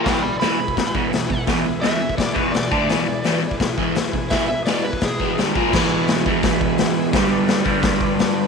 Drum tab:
CC |----------------|----------------|----------------|----------------|
HH |o---o---o---o---|o---o---o---o---|o---o---o---o---|o---o---o---o---|
SD |o---o---o---o---|o---o---o---o---|o---o---o---o---|o---o---o---o---|
BD |o------oo-o---o-|o------oo-o---o-|-------oo-o---o-|o------oo-o---o-|

CC |x---------------|----------------|
HH |----o---o---o---|o---o---o---o---|
SD |o---o---o---o---|o---o---o---o---|
BD |o-----o-o-o-----|o-----o-o-o-----|